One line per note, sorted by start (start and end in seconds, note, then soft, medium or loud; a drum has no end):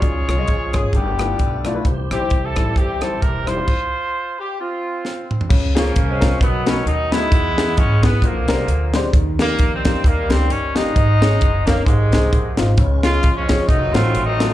0.00 0.24 C#2 medium
0.00 0.70 C#3 medium
0.00 0.92 F3 medium
0.00 0.92 G#3 soft
0.00 0.92 C#4 soft
0.00 0.71 F4 medium
0.00 0.71 G#4 medium
0.00 0.92 G#4 medium
0.00 0.75 C#5 loud
0.00 kick medium
0.00 closed hi-hat medium
0.28 0.45 C2 medium
0.28 0.35 G#3 medium
0.28 0.34 C#4 medium
0.28 0.35 F4 medium
0.28 0.35 C#5 medium
0.28 cross-stick loud
0.28 closed hi-hat medium
0.38 0.52 G#3 medium
0.38 0.52 C#4 medium
0.38 0.52 F4 medium
0.38 0.52 D#5 medium
0.48 0.70 A#1 medium
0.48 kick medium
0.48 closed hi-hat medium
0.73 0.91 G#1 medium
0.73 0.86 G#3 medium
0.73 0.87 C#4 medium
0.73 0.86 F4 medium
0.73 0.95 G#4 medium
0.73 0.86 C#5 medium
0.73 kick medium
0.73 cross-stick loud
0.73 closed hi-hat medium
0.93 1.32 G1 medium
0.93 1.62 G2 medium
0.93 1.83 A3 soft
0.93 1.00 A#3 soft
0.93 1.83 B3 medium
0.93 1.82 D4 medium
0.93 1.84 E4 medium
0.93 1.84 F4 medium
0.93 1.62 G4 medium
0.93 kick medium
0.93 closed hi-hat medium
0.99 1.86 B3 soft
1.19 1.32 A3 medium
1.19 1.32 E4 medium
1.19 1.32 F4 medium
1.19 1.32 B4 medium
1.19 cross-stick loud
1.19 closed hi-hat medium
1.39 1.78 B1 medium
1.39 kick medium
1.39 closed hi-hat medium
1.65 1.72 A3 medium
1.65 1.72 E4 medium
1.65 1.72 F4 medium
1.65 1.72 D5 medium
1.65 cross-stick medium
1.65 closed hi-hat medium
1.75 1.85 A3 medium
1.75 1.85 E4 medium
1.75 1.85 F4 medium
1.75 1.85 B4 medium
1.85 2.07 C2 medium
1.85 2.53 C3 medium
1.85 3.65 E3 medium
1.85 3.65 G3 medium
1.85 3.64 C4 medium
1.85 3.65 G4 medium
1.85 kick medium
1.85 closed hi-hat medium
2.11 2.28 A#1 medium
2.11 2.17 G3 medium
2.11 2.43 C4 medium
2.11 2.18 C4 medium
2.11 2.43 E4 medium
2.11 2.18 E4 medium
2.11 2.42 G4 medium
2.11 2.17 C5 medium
2.11 cross-stick loud
2.11 closed hi-hat medium
2.20 2.34 G3 medium
2.20 2.34 C4 medium
2.20 2.34 E4 medium
2.20 2.34 C5 medium
2.30 2.53 C2 medium
2.30 kick medium
2.30 closed hi-hat medium
2.45 2.75 C4 medium
2.45 2.76 E4 medium
2.45 2.77 A4 medium
2.56 2.74 A1 medium
2.56 2.69 G3 medium
2.56 2.69 C4 medium
2.56 2.69 E4 medium
2.56 2.69 A4 medium
2.56 kick medium
2.56 cross-stick loud
2.56 closed hi-hat soft
2.76 3.15 G1 medium
2.76 3.64 C4 medium
2.76 3.64 E4 medium
2.76 3.03 G4 medium
2.76 kick medium
2.76 closed hi-hat medium
3.01 3.15 G3 medium
3.01 3.15 C4 medium
3.01 3.15 E4 medium
3.01 3.22 A4 medium
3.01 3.15 C5 medium
3.01 cross-stick loud
3.01 closed hi-hat medium
3.22 3.61 E1 medium
3.22 3.48 A#4 medium
3.22 kick medium
3.22 closed hi-hat medium
3.46 3.54 G3 medium
3.46 3.54 C4 medium
3.46 3.54 E4 medium
3.46 4.36 F4 medium
3.46 3.54 C5 medium
3.46 4.40 C5 loud
3.46 cross-stick medium
3.46 closed hi-hat medium
3.57 3.67 G3 medium
3.57 3.68 C4 medium
3.57 3.68 E4 medium
3.57 3.68 C5 medium
3.68 kick medium
3.68 crash medium
4.40 4.59 G4 medium
4.60 5.47 C4 soft
4.60 5.27 F4 medium
5.05 snare soft
5.31 mid tom medium
5.41 floor tom medium
5.49 5.89 C#2 loud
5.49 6.17 C#3 medium
5.49 kick loud
5.49 crash loud
5.75 6.09 F3 medium
5.75 6.07 A#3 medium
5.75 5.88 C#4 medium
5.75 6.38 C#4 medium
5.75 5.88 F4 medium
5.75 5.88 G#4 medium
5.75 snare loud
5.75 closed hi-hat medium
5.96 6.35 C2 loud
5.96 kick loud
5.96 closed hi-hat medium
6.09 6.40 F3 medium
6.09 6.40 G#3 medium
6.09 6.42 C4 loud
6.21 6.34 C#4 medium
6.21 6.34 F4 medium
6.21 6.34 A#4 medium
6.21 kick medium
6.21 snare loud
6.21 closed hi-hat medium
6.40 6.80 B1 loud
6.40 7.08 B2 medium
6.40 7.28 D#3 medium
6.40 7.28 F#3 medium
6.40 6.67 B3 loud
6.40 kick loud
6.40 closed hi-hat medium
6.66 6.79 A3 medium
6.66 6.79 B3 medium
6.66 6.86 C#4 loud
6.66 6.79 D#4 medium
6.66 6.79 F#4 medium
6.66 6.79 B4 medium
6.66 snare loud
6.66 closed hi-hat medium
6.86 7.25 D#2 loud
6.86 7.11 D#4 loud
6.86 closed hi-hat medium
7.12 8.00 G#3 medium
7.12 7.25 A3 medium
7.12 7.25 B3 medium
7.12 8.00 B3 medium
7.12 7.25 D#4 medium
7.12 7.78 E4 loud
7.12 7.25 F#4 medium
7.12 7.25 B4 medium
7.12 snare loud
7.12 closed hi-hat medium
7.32 7.79 E2 loud
7.32 7.99 E3 medium
7.32 kick loud
7.32 closed hi-hat medium
7.57 7.70 B3 medium
7.57 7.70 E4 medium
7.57 7.70 G#4 medium
7.57 snare loud
7.57 closed hi-hat medium
7.77 8.16 G#1 loud
7.77 8.04 C#4 loud
7.77 kick loud
7.77 closed hi-hat medium
8.03 8.16 B3 medium
8.03 8.23 B3 medium
8.03 8.16 E4 medium
8.03 8.16 G#4 medium
8.03 kick loud
8.03 snare loud
8.03 closed hi-hat medium
8.22 8.44 A#1 loud
8.22 8.90 A#2 medium
8.22 9.10 D3 medium
8.22 9.11 F3 medium
8.22 8.95 A#3 medium
8.22 kick loud
8.22 closed hi-hat medium
8.48 8.65 C2 medium
8.48 8.61 G#3 medium
8.48 8.61 C4 medium
8.48 8.62 D4 medium
8.48 8.61 G4 medium
8.48 8.61 A#4 medium
8.48 snare loud
8.48 closed hi-hat medium
8.68 9.07 D2 loud
8.68 closed hi-hat medium
8.94 9.07 G#3 medium
8.94 9.07 C4 medium
8.94 9.07 D4 medium
8.94 9.07 G4 medium
8.94 9.07 C5 medium
8.94 snare loud
8.94 closed hi-hat medium
9.13 9.52 D#2 loud
9.13 9.81 D#3 medium
9.13 kick loud
9.13 closed hi-hat medium
9.39 9.73 D#3 medium
9.39 9.73 G3 medium
9.39 9.52 A#3 medium
9.39 9.71 A#3 loud
9.39 9.52 D#4 medium
9.39 9.52 G4 medium
9.39 snare loud
9.39 closed hi-hat medium
9.59 9.98 F2 medium
9.59 kick loud
9.59 closed hi-hat medium
9.74 10.05 D#3 medium
9.74 10.05 G3 medium
9.74 10.06 C4 loud
9.85 9.98 A#3 medium
9.85 9.98 D#4 medium
9.85 9.98 G4 medium
9.85 kick loud
9.85 snare loud
9.85 closed hi-hat medium
10.04 10.26 D#2 loud
10.04 10.92 D#3 medium
10.04 10.92 G3 medium
10.04 10.32 A#3 loud
10.04 kick loud
10.04 closed hi-hat medium
10.29 10.47 C#2 loud
10.29 10.43 A#3 medium
10.29 10.50 C4 loud
10.29 10.43 D#4 medium
10.29 10.43 G4 medium
10.29 snare loud
10.29 closed hi-hat medium
10.50 10.89 G1 loud
10.50 10.77 C#4 loud
10.50 closed hi-hat medium
10.75 11.63 G#3 medium
10.75 10.88 A#3 medium
10.75 10.88 D#4 medium
10.75 11.67 D#4 loud
10.75 10.88 G4 medium
10.75 snare loud
10.75 closed hi-hat medium
10.95 11.35 G#1 loud
10.95 11.63 G#2 medium
10.95 kick loud
10.95 closed hi-hat medium
11.22 11.35 C#4 medium
11.22 11.35 D#4 medium
11.22 11.35 G#4 medium
11.22 snare loud
11.22 closed hi-hat medium
11.41 11.80 F#1 loud
11.41 kick loud
11.41 closed hi-hat medium
11.67 11.87 A#3 medium
11.67 11.80 C#4 medium
11.67 11.80 D#4 medium
11.67 11.80 A#4 medium
11.67 kick medium
11.67 snare loud
11.67 closed hi-hat medium
11.86 12.08 G#1 loud
11.86 12.54 G#2 medium
11.86 12.74 C3 medium
11.86 12.74 D#3 medium
11.86 12.54 G#3 medium
11.86 kick loud
11.86 closed hi-hat medium
12.12 12.30 C2 medium
12.12 12.26 C4 medium
12.12 12.26 D#4 medium
12.12 12.26 G#4 medium
12.12 snare loud
12.12 closed hi-hat medium
12.33 12.54 A#1 medium
12.33 kick loud
12.33 closed hi-hat medium
12.57 12.75 G#1 medium
12.57 12.71 C4 medium
12.57 12.71 D#4 medium
12.57 12.71 F4 medium
12.57 snare medium
12.57 closed hi-hat medium
12.77 13.17 C#2 loud
12.77 13.45 C#3 medium
12.77 13.68 G#3 medium
12.77 13.68 C#4 medium
12.77 12.84 E4 medium
12.77 kick loud
12.77 closed hi-hat medium
12.84 13.70 F4 medium
13.03 13.37 G#3 medium
13.03 13.17 C#4 medium
13.03 13.35 C#4 medium
13.03 13.17 F4 medium
13.03 13.34 F4 loud
13.03 13.17 G#4 medium
13.03 snare loud
13.03 closed hi-hat medium
13.23 13.63 F2 medium
13.23 kick loud
13.23 closed hi-hat medium
13.36 13.68 F3 medium
13.36 13.68 G#3 medium
13.36 13.67 C#4 medium
13.48 13.62 C#4 medium
13.48 13.62 F4 medium
13.48 13.62 G#4 medium
13.48 kick medium
13.48 snare loud
13.48 closed hi-hat medium
13.67 13.95 F1 loud
13.67 14.54 D#3 medium
13.67 14.27 F#3 medium
13.67 14.54 F#3 medium
13.67 13.94 A3 medium
13.67 14.54 A3 medium
13.67 14.54 C4 medium
13.67 13.92 D#4 loud
13.67 14.54 F4 medium
13.67 kick loud
13.67 closed hi-hat medium
13.93 14.12 A1 loud
13.93 14.07 A3 medium
13.93 14.26 A3 medium
13.93 14.54 C4 medium
13.93 14.07 D#4 medium
13.93 14.27 F4 loud
13.93 14.07 F4 medium
13.93 14.07 F#4 medium
13.93 14.07 C5 medium
13.93 snare loud
13.93 closed hi-hat medium
14.15 14.54 A1 medium
14.15 closed hi-hat medium
14.25 14.54 F#3 medium
14.25 14.54 A3 medium
14.25 14.54 D#4 loud
14.40 14.53 A3 medium
14.40 14.53 D#4 medium
14.40 14.53 F4 medium
14.40 14.53 F#4 medium
14.40 14.53 A4 medium
14.40 snare loud
14.40 closed hi-hat medium